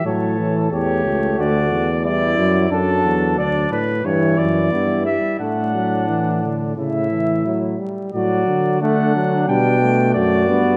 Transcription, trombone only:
\new Staff \with { instrumentName = "Trombone" } { \clef bass \time 4/4 \key d \mixolydian \tempo 4 = 90 fis8 e8 a2 g8 fis8 | \key d \major fis4. r8 e4 b8 g8 | a8 fis8 e8 d8 cis8 e8 fis8 g8 | fis4 a8 fis8 g8 a4 b8 | }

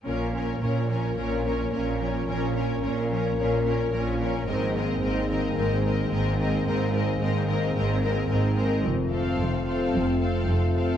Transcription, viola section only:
\new Staff \with { instrumentName = "Viola section" } { \time 4/4 \key bes \minor \tempo 4 = 110 des'8 des'8 des'8 des'8 des'8 des'8 des'8 des'8 | des'8 des'8 des'8 des'8 des'8 des'8 des'8 des'8 | c'8 c'8 c'8 c'8 c'8 c'8 c'8 c'8 | c'8 c'8 c'8 c'8 c'8 c'8 c'8 c'8 |
r8 c'4 c'4 c'4 c'8 | }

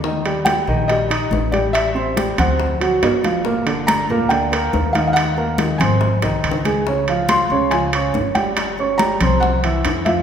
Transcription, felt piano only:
\new Staff \with { instrumentName = "Felt piano" } { \time 4/4 \key ees \major \tempo 4 = 141 r4 g''4 ees''4 r8 d''8 | e''4 r8 ges''4 r4. | r4 bes''4 g''4 \tuplet 3/2 { r8. f''8 f''16 } | ges''4 r8 aes''4 r4. |
r4 c'''4 aes''4 r8 g''8 | r4 bes''4 ges''4 r8 e''8 | }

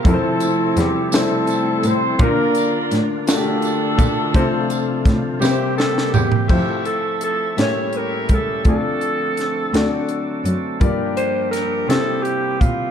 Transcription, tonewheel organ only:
<<
  \new Staff \with { instrumentName = "Tonewheel organ" } { \time 6/8 \key f \major \tempo 4. = 56 << { a'2. | d'2. | f4. <g bes g'>4. | <a c' a'>4. <cis' g'>4. |
<a c' a'>2. | <g bes g'>2. | } \\ { <c' e'>2. | f'2.~ | f'4. c'4. | e''2. |
d'2. | d'4. c'4. | } >> }
  \new Staff \with { instrumentName = "Tonewheel organ" } { \clef bass \time 6/8 \key f \major c2. | d2. | c4. c4. | f4. g4. |
f4. fis4. | f4. c4. | }
>>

